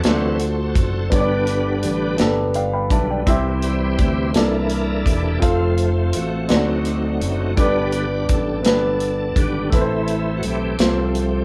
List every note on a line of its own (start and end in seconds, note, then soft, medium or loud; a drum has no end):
0.00 1.14 D3 medium
0.00 0.03 A3 medium
0.00 0.76 A3 medium
0.00 0.05 D4 medium
0.00 0.13 F#4 medium
0.00 0.07 C5 medium
0.00 closed hi-hat medium
0.05 0.73 D2 medium
0.05 0.38 E3 soft
0.05 0.38 F#3 soft
0.05 0.39 C4 soft
0.05 0.77 D4 soft
0.05 0.12 F4 soft
0.05 1.10 F#4 medium
0.05 1.10 A4 medium
0.05 0.78 C5 medium
0.05 1.17 C5 medium
0.05 snare medium
0.13 0.81 F#4 soft
0.40 closed hi-hat soft
0.75 1.09 F#1 medium
0.75 kick medium
0.75 closed hi-hat medium
1.10 1.80 G1 medium
1.10 2.16 G2 soft
1.10 2.16 D3 soft
1.10 2.16 G3 soft
1.10 1.83 B3 medium
1.10 2.17 B3 soft
1.10 1.84 D4 medium
1.10 1.84 G4 medium
1.10 1.20 C#5 medium
1.10 kick medium
1.10 closed hi-hat medium
1.14 2.17 D4 soft
1.14 2.17 G4 soft
1.14 2.17 B4 medium
1.20 1.88 D5 medium
1.47 closed hi-hat soft
1.83 2.17 A1 medium
1.83 closed hi-hat medium
2.18 2.88 G1 medium
2.18 2.91 B3 medium
2.18 2.91 D4 medium
2.18 2.92 G4 medium
2.18 2.92 A4 medium
2.18 snare medium
2.18 closed hi-hat medium
2.54 2.73 D5 soft
2.54 2.72 F5 medium
2.54 2.72 G5 soft
2.54 closed hi-hat soft
2.73 2.91 F5 soft
2.73 2.90 G5 soft
2.73 2.90 B5 soft
2.89 3.24 B1 medium
2.89 3.22 D3 soft
2.89 3.23 G3 soft
2.89 3.24 B3 soft
2.89 3.09 E5 soft
2.89 3.09 A5 medium
2.89 kick medium
2.89 closed hi-hat soft
3.11 3.44 D5 soft
3.11 3.44 G5 soft
3.26 3.95 C2 medium
3.26 4.31 C3 medium
3.26 4.31 E3 soft
3.26 4.31 G3 soft
3.26 3.99 C4 medium
3.26 4.32 C4 soft
3.26 3.99 E4 medium
3.26 4.00 G4 medium
3.26 4.00 E5 medium
3.26 kick medium
3.26 closed hi-hat medium
3.62 4.31 E4 medium
3.62 4.31 G4 soft
3.62 4.37 C5 medium
3.62 closed hi-hat soft
3.99 4.32 D2 medium
3.99 kick medium
3.99 closed hi-hat medium
4.33 5.02 C2 medium
4.33 5.38 C3 soft
4.33 5.39 E3 soft
4.33 5.06 A#3 medium
4.33 5.39 A#3 soft
4.33 4.41 D4 soft
4.33 5.40 D4 soft
4.33 5.07 A4 soft
4.33 5.39 A4 soft
4.33 5.08 D5 medium
4.33 snare medium
4.33 closed hi-hat medium
4.37 5.40 E4 soft
4.37 5.10 E4 soft
4.37 5.04 A#4 medium
4.70 closed hi-hat soft
5.06 5.39 E1 medium
5.06 5.40 G4 medium
5.06 kick medium
5.06 closed hi-hat medium
5.39 6.10 F1 medium
5.39 5.90 F3 soft
5.39 6.13 A3 soft
5.39 6.13 C4 medium
5.39 6.13 F4 medium
5.39 6.14 A4 medium
5.39 6.14 F5 medium
5.39 kick medium
5.39 closed hi-hat medium
5.44 6.14 C4 soft
5.44 6.17 F4 medium
5.78 closed hi-hat soft
6.13 6.48 A1 medium
6.13 7.54 A3 soft
6.13 6.48 C4 soft
6.13 7.55 F#4 medium
6.13 closed hi-hat medium
6.47 7.18 D2 medium
6.47 7.53 D3 soft
6.47 7.53 F#3 soft
6.47 7.20 C4 medium
6.47 7.53 C4 soft
6.47 7.21 D#4 medium
6.47 7.53 D#4 soft
6.47 7.22 F#4 soft
6.47 7.22 D5 medium
6.47 snare medium
6.47 closed hi-hat medium
6.85 closed hi-hat soft
7.21 7.54 F#1 medium
7.21 closed hi-hat medium
7.56 8.25 G1 medium
7.56 8.61 G2 soft
7.56 8.05 D3 soft
7.56 8.05 G3 soft
7.56 7.63 A3 soft
7.56 8.05 B3 soft
7.56 8.29 D4 medium
7.56 8.61 D4 medium
7.56 8.61 G4 soft
7.56 8.30 G4 medium
7.56 8.26 B4 medium
7.56 kick medium
7.56 closed hi-hat medium
7.60 8.32 B3 medium
7.60 8.30 D5 medium
7.92 closed hi-hat soft
8.29 8.66 A1 medium
8.29 8.67 A4 medium
8.29 kick medium
8.29 closed hi-hat medium
8.63 9.33 G1 medium
8.63 9.36 B3 medium
8.63 9.37 D4 soft
8.63 9.37 G4 soft
8.63 snare medium
8.63 closed hi-hat medium
8.67 9.69 D4 soft
8.67 9.40 A4 medium
8.67 9.38 B4 medium
9.00 closed hi-hat soft
9.36 9.69 G#1 medium
9.36 9.69 D3 soft
9.36 9.70 G3 soft
9.36 9.70 B3 soft
9.36 kick medium
9.36 closed hi-hat soft
9.40 9.75 G4 medium
9.70 10.40 A1 medium
9.70 10.76 A2 medium
9.70 10.76 E3 soft
9.70 10.43 A3 medium
9.70 10.77 A3 soft
9.70 10.44 C4 medium
9.70 10.45 C4 soft
9.70 10.45 E4 medium
9.70 kick medium
9.70 closed hi-hat medium
9.74 10.35 E4 medium
9.74 9.80 B4 medium
9.81 10.49 C5 medium
10.08 closed hi-hat soft
10.37 10.44 F#4 medium
10.43 10.77 B1 medium
10.43 10.80 C4 soft
10.43 closed hi-hat medium
10.48 11.45 G4 medium
10.78 11.45 C2 medium
10.78 11.45 F3 soft
10.78 11.45 A3 medium
10.78 11.45 A3 soft
10.78 11.45 C4 soft
10.78 11.45 F4 medium
10.78 snare medium
10.78 closed hi-hat medium
10.82 11.45 C5 medium
11.15 closed hi-hat soft